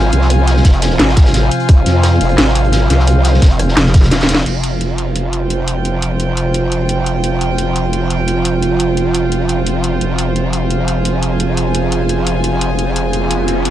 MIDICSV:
0, 0, Header, 1, 7, 480
1, 0, Start_track
1, 0, Key_signature, -4, "minor"
1, 0, Tempo, 346821
1, 417, Time_signature, 4, 2, 24, 8
1, 18964, End_track
2, 0, Start_track
2, 0, Title_t, "String section"
2, 0, Program_c, 0, 48
2, 0, Note_on_c, 0, 65, 84
2, 0, Note_on_c, 0, 72, 71
2, 0, Note_on_c, 0, 80, 80
2, 6161, Note_off_c, 0, 65, 0
2, 6176, Note_off_c, 0, 80, 0
2, 6177, Note_off_c, 0, 72, 0
2, 6177, Note_on_c, 0, 65, 78
2, 6417, Note_on_c, 0, 72, 71
2, 7452, Note_on_c, 0, 79, 74
2, 14932, Note_on_c, 0, 80, 75
2, 15076, Note_off_c, 0, 79, 0
2, 18964, Note_off_c, 0, 65, 0
2, 18964, Note_off_c, 0, 72, 0
2, 18964, Note_off_c, 0, 80, 0
2, 18964, End_track
3, 0, Start_track
3, 0, Title_t, "Synth drone"
3, 0, Program_c, 1, 95
3, 0, Note_on_c, 1, 48, 82
3, 0, Note_on_c, 1, 53, 75
3, 0, Note_on_c, 1, 65, 74
3, 0, Note_on_c, 1, 77, 91
3, 6121, Note_off_c, 1, 48, 0
3, 6121, Note_off_c, 1, 53, 0
3, 6121, Note_off_c, 1, 65, 0
3, 6145, Note_off_c, 1, 77, 0
3, 6175, Note_on_c, 1, 48, 82
3, 6175, Note_on_c, 1, 53, 74
3, 6175, Note_on_c, 1, 65, 74
3, 6175, Note_on_c, 1, 72, 87
3, 13824, Note_off_c, 1, 72, 0
3, 13858, Note_on_c, 1, 68, 89
3, 18964, Note_off_c, 1, 48, 0
3, 18964, Note_off_c, 1, 53, 0
3, 18964, Note_off_c, 1, 65, 0
3, 18964, Note_off_c, 1, 68, 0
3, 18964, End_track
4, 0, Start_track
4, 0, Title_t, "Wobble bass"
4, 0, Program_c, 2, 39
4, 0, Note_on_c, 2, 32, 95
4, 157, Note_off_c, 2, 32, 0
4, 176, Note_on_c, 2, 36, 95
4, 877, Note_off_c, 2, 36, 0
4, 896, Note_on_c, 2, 29, 97
4, 1357, Note_off_c, 2, 29, 0
4, 1376, Note_on_c, 2, 32, 97
4, 2077, Note_off_c, 2, 32, 0
4, 2336, Note_on_c, 2, 29, 98
4, 2557, Note_off_c, 2, 29, 0
4, 2576, Note_on_c, 2, 41, 94
4, 3037, Note_off_c, 2, 41, 0
4, 3056, Note_on_c, 2, 29, 99
4, 3277, Note_off_c, 2, 29, 0
4, 3296, Note_on_c, 2, 32, 97
4, 3997, Note_off_c, 2, 32, 0
4, 4015, Note_on_c, 2, 36, 96
4, 4717, Note_off_c, 2, 36, 0
4, 4736, Note_on_c, 2, 29, 99
4, 5197, Note_off_c, 2, 29, 0
4, 5696, Note_on_c, 2, 27, 99
4, 6157, Note_off_c, 2, 27, 0
4, 6176, Note_on_c, 2, 29, 86
4, 13832, Note_off_c, 2, 29, 0
4, 13856, Note_on_c, 2, 29, 86
4, 18964, Note_off_c, 2, 29, 0
4, 18964, End_track
5, 0, Start_track
5, 0, Title_t, "Wobble bass"
5, 0, Program_c, 3, 39
5, 5215, Note_on_c, 3, 29, 100
5, 5677, Note_off_c, 3, 29, 0
5, 18964, End_track
6, 0, Start_track
6, 0, Title_t, "Riser"
6, 0, Program_c, 4, 103
6, 17696, Note_on_c, 4, 60, 75
6, 18964, Note_off_c, 4, 60, 0
6, 18964, End_track
7, 0, Start_track
7, 0, Title_t, "Drums"
7, 164, Note_on_c, 9, 42, 67
7, 176, Note_off_c, 9, 42, 0
7, 176, Note_on_c, 9, 42, 92
7, 297, Note_on_c, 9, 38, 48
7, 314, Note_off_c, 9, 42, 0
7, 416, Note_on_c, 9, 42, 88
7, 417, Note_off_c, 9, 42, 0
7, 417, Note_on_c, 9, 37, 32
7, 417, Note_on_c, 9, 42, 79
7, 436, Note_off_c, 9, 38, 0
7, 555, Note_off_c, 9, 37, 0
7, 555, Note_off_c, 9, 42, 0
7, 654, Note_on_c, 9, 42, 70
7, 657, Note_off_c, 9, 42, 0
7, 657, Note_on_c, 9, 42, 94
7, 660, Note_on_c, 9, 38, 55
7, 783, Note_off_c, 9, 38, 0
7, 783, Note_on_c, 9, 38, 53
7, 795, Note_off_c, 9, 42, 0
7, 890, Note_off_c, 9, 38, 0
7, 890, Note_on_c, 9, 38, 120
7, 896, Note_on_c, 9, 36, 61
7, 896, Note_on_c, 9, 42, 79
7, 1009, Note_off_c, 9, 42, 0
7, 1009, Note_on_c, 9, 42, 46
7, 1029, Note_off_c, 9, 38, 0
7, 1035, Note_off_c, 9, 36, 0
7, 1136, Note_off_c, 9, 42, 0
7, 1136, Note_on_c, 9, 42, 87
7, 1138, Note_off_c, 9, 42, 0
7, 1138, Note_on_c, 9, 42, 85
7, 1139, Note_on_c, 9, 38, 98
7, 1249, Note_off_c, 9, 38, 0
7, 1249, Note_on_c, 9, 38, 56
7, 1276, Note_off_c, 9, 42, 0
7, 1372, Note_on_c, 9, 42, 92
7, 1376, Note_off_c, 9, 38, 0
7, 1376, Note_off_c, 9, 42, 0
7, 1376, Note_on_c, 9, 38, 116
7, 1376, Note_on_c, 9, 42, 79
7, 1508, Note_off_c, 9, 38, 0
7, 1508, Note_on_c, 9, 38, 62
7, 1515, Note_off_c, 9, 42, 0
7, 1616, Note_on_c, 9, 36, 101
7, 1616, Note_on_c, 9, 42, 92
7, 1619, Note_off_c, 9, 38, 0
7, 1619, Note_on_c, 9, 38, 111
7, 1733, Note_off_c, 9, 38, 0
7, 1733, Note_on_c, 9, 38, 106
7, 1746, Note_off_c, 9, 42, 0
7, 1746, Note_on_c, 9, 42, 76
7, 1755, Note_off_c, 9, 36, 0
7, 1852, Note_off_c, 9, 42, 0
7, 1852, Note_on_c, 9, 42, 90
7, 1856, Note_off_c, 9, 42, 0
7, 1856, Note_on_c, 9, 42, 80
7, 1857, Note_off_c, 9, 38, 0
7, 1857, Note_on_c, 9, 38, 114
7, 1995, Note_off_c, 9, 38, 0
7, 1995, Note_off_c, 9, 42, 0
7, 2096, Note_on_c, 9, 42, 67
7, 2212, Note_off_c, 9, 42, 0
7, 2212, Note_on_c, 9, 42, 50
7, 2333, Note_off_c, 9, 42, 0
7, 2333, Note_on_c, 9, 42, 95
7, 2336, Note_off_c, 9, 42, 0
7, 2336, Note_on_c, 9, 36, 118
7, 2336, Note_on_c, 9, 42, 81
7, 2474, Note_off_c, 9, 42, 0
7, 2475, Note_off_c, 9, 36, 0
7, 2576, Note_on_c, 9, 42, 98
7, 2581, Note_off_c, 9, 42, 0
7, 2581, Note_on_c, 9, 42, 65
7, 2583, Note_on_c, 9, 38, 48
7, 2719, Note_off_c, 9, 42, 0
7, 2721, Note_off_c, 9, 38, 0
7, 2814, Note_on_c, 9, 38, 114
7, 2816, Note_on_c, 9, 37, 34
7, 2816, Note_on_c, 9, 42, 82
7, 2819, Note_off_c, 9, 42, 0
7, 2819, Note_on_c, 9, 42, 86
7, 2953, Note_off_c, 9, 38, 0
7, 2955, Note_off_c, 9, 37, 0
7, 2957, Note_off_c, 9, 42, 0
7, 3056, Note_on_c, 9, 42, 91
7, 3069, Note_off_c, 9, 42, 0
7, 3069, Note_on_c, 9, 42, 66
7, 3170, Note_off_c, 9, 42, 0
7, 3170, Note_on_c, 9, 42, 45
7, 3294, Note_off_c, 9, 42, 0
7, 3294, Note_on_c, 9, 42, 88
7, 3296, Note_off_c, 9, 42, 0
7, 3296, Note_on_c, 9, 38, 114
7, 3296, Note_on_c, 9, 42, 83
7, 3434, Note_off_c, 9, 38, 0
7, 3434, Note_on_c, 9, 38, 42
7, 3435, Note_off_c, 9, 42, 0
7, 3536, Note_on_c, 9, 42, 95
7, 3548, Note_off_c, 9, 42, 0
7, 3548, Note_on_c, 9, 42, 65
7, 3572, Note_off_c, 9, 38, 0
7, 3657, Note_off_c, 9, 42, 0
7, 3657, Note_on_c, 9, 42, 46
7, 3770, Note_on_c, 9, 38, 127
7, 3775, Note_off_c, 9, 42, 0
7, 3775, Note_on_c, 9, 42, 83
7, 3779, Note_off_c, 9, 42, 0
7, 3779, Note_on_c, 9, 42, 93
7, 3909, Note_off_c, 9, 38, 0
7, 3918, Note_off_c, 9, 42, 0
7, 4012, Note_on_c, 9, 42, 65
7, 4016, Note_off_c, 9, 42, 0
7, 4016, Note_on_c, 9, 38, 36
7, 4016, Note_on_c, 9, 42, 97
7, 4147, Note_off_c, 9, 38, 0
7, 4147, Note_on_c, 9, 38, 47
7, 4154, Note_off_c, 9, 42, 0
7, 4250, Note_on_c, 9, 42, 83
7, 4256, Note_off_c, 9, 42, 0
7, 4256, Note_on_c, 9, 42, 83
7, 4286, Note_off_c, 9, 38, 0
7, 4394, Note_off_c, 9, 42, 0
7, 4489, Note_on_c, 9, 42, 72
7, 4496, Note_off_c, 9, 42, 0
7, 4496, Note_on_c, 9, 42, 98
7, 4501, Note_on_c, 9, 38, 53
7, 4622, Note_off_c, 9, 38, 0
7, 4622, Note_on_c, 9, 38, 53
7, 4634, Note_off_c, 9, 42, 0
7, 4735, Note_on_c, 9, 42, 84
7, 4736, Note_on_c, 9, 36, 60
7, 4741, Note_off_c, 9, 38, 0
7, 4741, Note_on_c, 9, 38, 117
7, 4742, Note_off_c, 9, 42, 0
7, 4742, Note_on_c, 9, 42, 81
7, 4861, Note_off_c, 9, 42, 0
7, 4861, Note_on_c, 9, 42, 47
7, 4874, Note_off_c, 9, 36, 0
7, 4880, Note_off_c, 9, 38, 0
7, 4976, Note_off_c, 9, 42, 0
7, 4976, Note_on_c, 9, 37, 54
7, 4976, Note_on_c, 9, 42, 95
7, 4985, Note_off_c, 9, 42, 0
7, 4985, Note_on_c, 9, 42, 64
7, 5101, Note_on_c, 9, 38, 56
7, 5114, Note_off_c, 9, 37, 0
7, 5123, Note_off_c, 9, 42, 0
7, 5216, Note_off_c, 9, 38, 0
7, 5216, Note_on_c, 9, 38, 115
7, 5216, Note_on_c, 9, 42, 85
7, 5224, Note_off_c, 9, 42, 0
7, 5224, Note_on_c, 9, 42, 95
7, 5338, Note_off_c, 9, 38, 0
7, 5338, Note_on_c, 9, 38, 58
7, 5363, Note_off_c, 9, 42, 0
7, 5449, Note_off_c, 9, 38, 0
7, 5449, Note_on_c, 9, 38, 100
7, 5455, Note_on_c, 9, 42, 96
7, 5456, Note_on_c, 9, 36, 105
7, 5458, Note_off_c, 9, 42, 0
7, 5458, Note_on_c, 9, 42, 86
7, 5567, Note_off_c, 9, 42, 0
7, 5567, Note_on_c, 9, 42, 78
7, 5575, Note_off_c, 9, 38, 0
7, 5575, Note_on_c, 9, 38, 103
7, 5594, Note_off_c, 9, 36, 0
7, 5691, Note_off_c, 9, 42, 0
7, 5691, Note_on_c, 9, 42, 85
7, 5696, Note_off_c, 9, 38, 0
7, 5696, Note_off_c, 9, 42, 0
7, 5696, Note_on_c, 9, 38, 70
7, 5696, Note_on_c, 9, 42, 86
7, 5699, Note_off_c, 9, 38, 0
7, 5699, Note_on_c, 9, 38, 108
7, 5812, Note_off_c, 9, 38, 0
7, 5812, Note_on_c, 9, 38, 106
7, 5814, Note_off_c, 9, 42, 0
7, 5814, Note_on_c, 9, 42, 81
7, 5856, Note_off_c, 9, 38, 0
7, 5856, Note_on_c, 9, 38, 83
7, 5934, Note_off_c, 9, 38, 0
7, 5934, Note_on_c, 9, 38, 113
7, 5936, Note_off_c, 9, 42, 0
7, 5936, Note_on_c, 9, 42, 99
7, 5939, Note_off_c, 9, 42, 0
7, 5939, Note_on_c, 9, 42, 80
7, 6015, Note_off_c, 9, 38, 0
7, 6015, Note_on_c, 9, 38, 99
7, 6056, Note_off_c, 9, 42, 0
7, 6056, Note_on_c, 9, 42, 84
7, 6057, Note_off_c, 9, 38, 0
7, 6057, Note_on_c, 9, 38, 105
7, 6176, Note_off_c, 9, 42, 0
7, 6176, Note_on_c, 9, 42, 80
7, 6176, Note_on_c, 9, 49, 82
7, 6196, Note_off_c, 9, 38, 0
7, 6314, Note_off_c, 9, 42, 0
7, 6314, Note_off_c, 9, 49, 0
7, 6416, Note_on_c, 9, 42, 95
7, 6554, Note_off_c, 9, 42, 0
7, 6655, Note_on_c, 9, 42, 80
7, 6794, Note_off_c, 9, 42, 0
7, 6895, Note_on_c, 9, 42, 87
7, 7034, Note_off_c, 9, 42, 0
7, 7136, Note_on_c, 9, 42, 79
7, 7274, Note_off_c, 9, 42, 0
7, 7376, Note_on_c, 9, 42, 89
7, 7515, Note_off_c, 9, 42, 0
7, 7616, Note_on_c, 9, 42, 80
7, 7755, Note_off_c, 9, 42, 0
7, 7856, Note_on_c, 9, 42, 93
7, 7995, Note_off_c, 9, 42, 0
7, 8096, Note_on_c, 9, 42, 75
7, 8235, Note_off_c, 9, 42, 0
7, 8337, Note_on_c, 9, 42, 90
7, 8475, Note_off_c, 9, 42, 0
7, 8576, Note_on_c, 9, 42, 76
7, 8715, Note_off_c, 9, 42, 0
7, 8816, Note_on_c, 9, 42, 86
7, 8955, Note_off_c, 9, 42, 0
7, 9056, Note_on_c, 9, 42, 76
7, 9195, Note_off_c, 9, 42, 0
7, 9296, Note_on_c, 9, 42, 88
7, 9435, Note_off_c, 9, 42, 0
7, 9537, Note_on_c, 9, 42, 76
7, 9675, Note_off_c, 9, 42, 0
7, 9776, Note_on_c, 9, 42, 89
7, 9915, Note_off_c, 9, 42, 0
7, 10016, Note_on_c, 9, 42, 73
7, 10155, Note_off_c, 9, 42, 0
7, 10256, Note_on_c, 9, 42, 86
7, 10394, Note_off_c, 9, 42, 0
7, 10496, Note_on_c, 9, 42, 74
7, 10634, Note_off_c, 9, 42, 0
7, 10736, Note_on_c, 9, 42, 84
7, 10874, Note_off_c, 9, 42, 0
7, 10976, Note_on_c, 9, 42, 75
7, 11114, Note_off_c, 9, 42, 0
7, 11216, Note_on_c, 9, 42, 85
7, 11354, Note_off_c, 9, 42, 0
7, 11456, Note_on_c, 9, 42, 74
7, 11594, Note_off_c, 9, 42, 0
7, 11696, Note_on_c, 9, 42, 88
7, 11834, Note_off_c, 9, 42, 0
7, 11936, Note_on_c, 9, 42, 71
7, 12075, Note_off_c, 9, 42, 0
7, 12177, Note_on_c, 9, 42, 85
7, 12315, Note_off_c, 9, 42, 0
7, 12417, Note_on_c, 9, 42, 72
7, 12555, Note_off_c, 9, 42, 0
7, 12657, Note_on_c, 9, 42, 83
7, 12795, Note_off_c, 9, 42, 0
7, 12896, Note_on_c, 9, 42, 73
7, 13035, Note_off_c, 9, 42, 0
7, 13136, Note_on_c, 9, 42, 82
7, 13274, Note_off_c, 9, 42, 0
7, 13376, Note_on_c, 9, 42, 71
7, 13514, Note_off_c, 9, 42, 0
7, 13616, Note_on_c, 9, 42, 84
7, 13754, Note_off_c, 9, 42, 0
7, 13856, Note_on_c, 9, 42, 74
7, 13995, Note_off_c, 9, 42, 0
7, 14096, Note_on_c, 9, 42, 84
7, 14234, Note_off_c, 9, 42, 0
7, 14336, Note_on_c, 9, 42, 72
7, 14474, Note_off_c, 9, 42, 0
7, 14575, Note_on_c, 9, 42, 82
7, 14714, Note_off_c, 9, 42, 0
7, 14816, Note_on_c, 9, 42, 73
7, 14954, Note_off_c, 9, 42, 0
7, 15056, Note_on_c, 9, 42, 83
7, 15194, Note_off_c, 9, 42, 0
7, 15296, Note_on_c, 9, 42, 74
7, 15434, Note_off_c, 9, 42, 0
7, 15536, Note_on_c, 9, 42, 85
7, 15674, Note_off_c, 9, 42, 0
7, 15776, Note_on_c, 9, 42, 76
7, 15915, Note_off_c, 9, 42, 0
7, 16016, Note_on_c, 9, 42, 89
7, 16155, Note_off_c, 9, 42, 0
7, 16256, Note_on_c, 9, 42, 77
7, 16394, Note_off_c, 9, 42, 0
7, 16496, Note_on_c, 9, 42, 86
7, 16635, Note_off_c, 9, 42, 0
7, 16736, Note_on_c, 9, 42, 78
7, 16875, Note_off_c, 9, 42, 0
7, 16976, Note_on_c, 9, 42, 87
7, 17115, Note_off_c, 9, 42, 0
7, 17216, Note_on_c, 9, 42, 77
7, 17355, Note_off_c, 9, 42, 0
7, 17456, Note_on_c, 9, 42, 89
7, 17595, Note_off_c, 9, 42, 0
7, 17696, Note_on_c, 9, 42, 78
7, 17835, Note_off_c, 9, 42, 0
7, 17936, Note_on_c, 9, 42, 92
7, 18074, Note_off_c, 9, 42, 0
7, 18176, Note_on_c, 9, 42, 79
7, 18314, Note_off_c, 9, 42, 0
7, 18416, Note_on_c, 9, 42, 88
7, 18554, Note_off_c, 9, 42, 0
7, 18656, Note_on_c, 9, 42, 78
7, 18795, Note_off_c, 9, 42, 0
7, 18896, Note_on_c, 9, 42, 91
7, 18964, Note_off_c, 9, 42, 0
7, 18964, End_track
0, 0, End_of_file